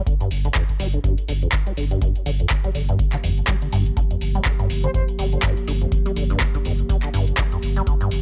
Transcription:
0.07 D3, kick, closed hi-hat
0.20 G2, closed hi-hat
0.31 G1, open hi-hat
0.45 D3, closed hi-hat
0.55 F2, kick, clap, closed hi-hat
0.69 kick, closed hi-hat
0.80 G1 G3, open hi-hat
0.94 D3, closed hi-hat
1.04 G2, kick, closed hi-hat
1.18 closed hi-hat
1.28 G1 D3, open hi-hat
1.42 F2, closed hi-hat
1.52 kick, clap, closed hi-hat
1.67 G3, closed hi-hat
1.77 G1 D3, open hi-hat
1.91 G2, closed hi-hat
2.02 G2 F3 A#3 G4, kick, closed hi-hat
2.16 closed hi-hat
2.26 G1 D3, open hi-hat
2.40 F2, closed hi-hat
2.50 kick, clap, closed hi-hat
2.64 G3, kick, closed hi-hat
2.75 G1 D3, open hi-hat
2.89 G2, closed hi-hat
2.99 kick, closed hi-hat
3.13 D3, clap, closed hi-hat
3.24 G1 F2, open hi-hat
3.38 closed hi-hat
3.47 G3, kick, clap, closed hi-hat
3.62 D3, closed hi-hat
3.72 G1 G2, open hi-hat
3.86 closed hi-hat
3.97 D3, kick, closed hi-hat
4.11 F2, closed hi-hat
4.21 G1, open hi-hat
4.35 G3, closed hi-hat
4.45 D3, kick, clap, closed hi-hat
4.59 G2, kick, closed hi-hat
4.70 G1, open hi-hat
4.84 D3 C5, closed hi-hat
4.94 F2 C5, kick, closed hi-hat
5.08 closed hi-hat
5.19 G1 G3, open hi-hat
5.33 D3, closed hi-hat
5.43 G2, kick, clap, closed hi-hat
5.57 closed hi-hat
5.67 G1 D3, open hi-hat
5.81 F2, closed hi-hat
5.92 kick, closed hi-hat
6.06 G3, closed hi-hat
6.16 G1 D3, open hi-hat
6.30 G2, closed hi-hat
6.40 kick, clap, closed hi-hat
6.55 D3, kick, closed hi-hat
6.65 G1 F2, open hi-hat
6.79 closed hi-hat
6.89 G3, kick, closed hi-hat
7.03 D3, clap, closed hi-hat
7.14 G1 G2, open hi-hat
7.28 closed hi-hat
7.38 D3, kick, clap, closed hi-hat
7.52 F2, closed hi-hat
7.62 G1, open hi-hat
7.76 G3, closed hi-hat
7.87 D3, kick, closed hi-hat
8.01 G2, closed hi-hat
8.11 G1, open hi-hat

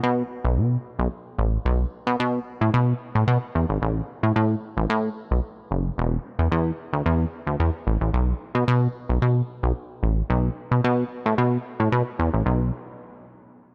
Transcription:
0.03 B2
0.44 B1
0.57 B2
0.99 B1
1.38 A1
1.65 B1
2.07 B2
2.20 B2
2.61 A2
2.74 B2
3.15 A2
3.28 B2
3.55 E2
3.69 G#1
3.82 A1
4.23 A2
4.36 A2
4.77 A1
4.90 A2
5.31 B1
5.71 F#1
5.98 E1
6.39 E2
6.52 E2
6.93 D2
7.06 E2
7.47 D2
7.60 E2
7.87 A1
8.01 A1
8.14 B1
8.55 B2
8.68 B2
9.09 B1
9.22 B2
9.63 B1
10.03 A1
10.30 B1
10.71 B2
10.84 B2
11.26 A2
11.38 B2
11.80 A2
11.92 B2
12.19 E2
12.34 A1
12.46 B1

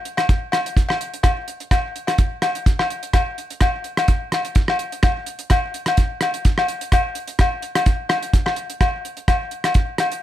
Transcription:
0.05 closed hi-hat
0.17 cross-stick, closed hi-hat, low agogo
0.29 kick, closed hi-hat
0.52 cross-stick, closed hi-hat, low agogo
0.66 closed hi-hat
0.77 kick, closed hi-hat
0.89 cross-stick, low agogo
1.01 closed hi-hat
1.14 closed hi-hat
1.23 kick, cross-stick, closed hi-hat, low agogo
1.48 closed hi-hat
1.60 closed hi-hat
1.71 kick, cross-stick, closed hi-hat, low agogo
1.96 closed hi-hat
2.07 cross-stick, closed hi-hat, low agogo
2.18 kick, closed hi-hat
2.42 cross-stick, closed hi-hat, low agogo
2.55 closed hi-hat
2.66 kick, closed hi-hat
2.79 cross-stick, low agogo
2.90 closed hi-hat
3.03 closed hi-hat
3.13 kick, cross-stick, closed hi-hat, low agogo
3.38 closed hi-hat
3.50 closed hi-hat
3.61 kick, cross-stick, closed hi-hat, low agogo
3.84 closed hi-hat
3.97 cross-stick, closed hi-hat, low agogo
4.08 kick, closed hi-hat
4.32 cross-stick, closed hi-hat, low agogo
4.45 closed hi-hat
4.55 kick, closed hi-hat
4.68 cross-stick, low agogo
4.79 closed hi-hat
4.92 closed hi-hat
5.03 kick, cross-stick, closed hi-hat, low agogo
5.26 closed hi-hat
5.39 closed hi-hat
5.50 kick, cross-stick, closed hi-hat, low agogo
5.74 closed hi-hat
5.86 cross-stick, closed hi-hat, low agogo
5.97 kick, closed hi-hat
6.21 cross-stick, closed hi-hat, low agogo
6.34 closed hi-hat
6.45 kick, closed hi-hat
6.58 cross-stick, low agogo
6.68 closed hi-hat
6.81 closed hi-hat
6.92 kick, cross-stick, closed hi-hat, low agogo
7.15 closed hi-hat
7.28 closed hi-hat
7.39 kick, cross-stick, closed hi-hat, low agogo
7.62 closed hi-hat
7.75 cross-stick, closed hi-hat, low agogo
7.86 kick, closed hi-hat
8.09 cross-stick, closed hi-hat, low agogo
8.22 closed hi-hat
8.34 kick, closed hi-hat
8.46 cross-stick, low agogo
8.56 closed hi-hat
8.70 closed hi-hat
8.81 kick, cross-stick, closed hi-hat, low agogo
9.05 closed hi-hat
9.17 closed hi-hat
9.28 kick, cross-stick, closed hi-hat, low agogo
9.51 closed hi-hat
9.64 cross-stick, closed hi-hat, low agogo
9.74 kick, closed hi-hat
9.98 cross-stick, closed hi-hat, low agogo
10.12 closed hi-hat

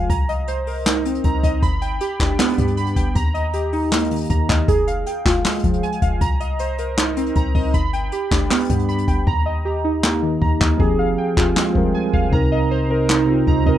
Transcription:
0.10 C2 A#5, kick, closed hi-hat
0.29 D#5, closed hi-hat
0.48 C5, closed hi-hat
0.67 A#4, open hi-hat
0.86 D#4, snare, clap, hi-hat pedal
1.05 C4, closed hi-hat
1.15 closed hi-hat
1.24 C2 A#5, kick, closed hi-hat
1.43 C2 D#5, kick, closed hi-hat
1.62 G1 B5, kick, closed hi-hat
1.82 G5, closed hi-hat
2.01 G4, closed hi-hat
2.20 G1 D4, kick, snare, clap
2.39 B3, snare, clap
2.44 closed hi-hat
2.49 closed hi-hat
2.53 closed hi-hat
2.58 G2 G3, kick, closed hi-hat
2.68 closed hi-hat
2.77 B5, closed hi-hat
2.87 closed hi-hat
2.96 G1 G5, kick, closed hi-hat
3.15 D#2 A#5, kick, closed hi-hat
3.34 D#5, closed hi-hat
3.53 G4, closed hi-hat
3.73 D#4, open hi-hat
3.92 A#3, snare, clap, hi-hat pedal
4.05 closed hi-hat
4.11 D#3, closed hi-hat
4.16 closed hi-hat
4.17 closed hi-hat
4.20 closed hi-hat
4.24 closed hi-hat
4.25 closed hi-hat
4.30 D#2 A#5, kick, closed hi-hat
4.49 D#2 D#5, kick, snare, clap
4.68 F1 G#4, kick, closed hi-hat
4.87 F5, closed hi-hat
5.06 G5, closed hi-hat
5.25 F1 F4, kick, snare, clap
5.45 G#3, snare, clap
5.50 closed hi-hat
5.54 closed hi-hat
5.59 closed hi-hat
5.64 F1 F3, kick, closed hi-hat
5.73 closed hi-hat
5.83 G#5, closed hi-hat
5.92 closed hi-hat
6.02 F1 F5, kick, closed hi-hat
6.21 C2 A#5, kick, closed hi-hat
6.40 D#5, closed hi-hat
6.59 C5, closed hi-hat
6.78 A#4, closed hi-hat
6.98 D#4, snare, clap
7.17 C4, closed hi-hat
7.26 closed hi-hat
7.35 C2 A#5, kick, closed hi-hat
7.55 C2 D#5, kick, open hi-hat
7.74 G1 B5, kick, closed hi-hat
7.93 G5, closed hi-hat
8.12 G4, closed hi-hat
8.31 G1 D4, kick, snare, clap
8.50 B3, snare, clap
8.55 closed hi-hat
8.60 closed hi-hat
8.65 closed hi-hat
8.70 G2 G3, kick, closed hi-hat
8.79 closed hi-hat
8.89 B5, closed hi-hat
8.98 closed hi-hat
9.08 G1 G5, kick, closed hi-hat
9.27 D#2 A#5, kick
9.46 D#5
9.65 G4
9.84 D#4
10.03 A#3, snare, clap
10.22 D#3
10.42 D#2 A#5, kick
10.61 D#2 D#5, kick, snare, clap
10.77 F1 F3 C4 G4 G#4, kick
10.82 G#4
10.99 F5
11.18 G5
11.35 F1 F3 C4 F4 G4, kick, snare, clap
11.39 G#4
11.56 G#3, snare, clap
11.73 F1 F3 G3 C4, kick
11.78 A#4
11.94 G#5
12.14 F1 F5, kick
12.30 C2 C3 C4 D#4 A#5, kick
12.35 A#4
12.52 D#5
12.71 C5
12.88 C3 C4 D#4 A#4
12.92 A#4
13.09 D#4, snare, clap
13.26 C3 C4 D#4
13.30 F4
13.47 C2 A#5, kick
13.64 C2 C3 C4 D#4 D#5, kick
13.69 A#4

